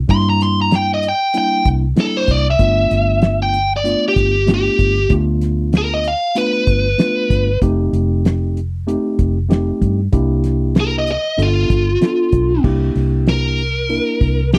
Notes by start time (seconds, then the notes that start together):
0.08 G2 G3 A#3 D4 E4 C6, kick, closed hi-hat
0.29 A#5
0.41 C6, snare, closed hi-hat
0.62 A#5
0.71 snare, closed hi-hat
0.76 G5
0.94 D#5
1.03 closed hi-hat
1.09 G5
1.34 G3 A#3 D4 E4, closed hi-hat
1.38 G5
1.65 C2, kick, closed hi-hat
1.96 G3 A#3 D4 E4, snare, closed hi-hat
2.00 A4
2.17 C5
2.28 C2 D5, kick, closed hi-hat
2.50 E5
2.59 G1 A3 B3 D4 F4, kick, closed hi-hat
2.91 G1, snare, closed hi-hat
3.22 snare, closed hi-hat
3.42 G5
3.54 closed hi-hat
3.76 D5
3.84 A3 B3 D4 F4, closed hi-hat
4.08 G4
4.16 G1, kick, closed hi-hat
4.46 A3 B3 D4 F4, snare, closed hi-hat
4.54 G4
4.79 G1, kick, closed hi-hat
5.09 D2 A3 B3 D4 F4, kick, closed hi-hat
5.41 snare, closed hi-hat
5.73 snare, closed hi-hat
5.77 A#4
5.94 D#5
6.04 F5, closed hi-hat
6.35 A3 B3 D4 F4 B4, closed hi-hat
6.67 G1, kick, closed hi-hat
6.98 A3 B3 D4 F4, snare, closed hi-hat
7.30 G1, kick, closed hi-hat
7.61 F1 A3 C4 D#4 G4, kick, closed hi-hat
7.93 F1, closed hi-hat
8.25 snare, closed hi-hat
8.57 closed hi-hat
8.87 A3 C4 D#4 G4, closed hi-hat
9.19 F1, kick, closed hi-hat
9.49 A3 C4 D#4 G4, snare, closed hi-hat
9.81 G2, kick, closed hi-hat
10.12 C2 A#3 D4 E4 G4, kick, closed hi-hat
10.44 snare, closed hi-hat
10.75 snare, closed hi-hat
10.80 A#4
10.98 D#5
11.07 closed hi-hat
11.11 D#5
11.38 G1 B3 D4 F4 A4, closed hi-hat
11.43 F4
11.70 G1, kick, closed hi-hat
12.01 B3 D4 F4 A4, snare, closed hi-hat
12.32 B1, kick, closed hi-hat
12.64 C2 A#3 D4 E4 G4, kick, crash
12.96 C2, snare, open hi-hat
13.27 A#4, snare, open hi-hat
13.58 open hi-hat
13.89 A#3 D4 E4 A#4, open hi-hat
14.21 C2, kick, open hi-hat
14.53 A#3 D4 E4 G4 A#4, snare, open hi-hat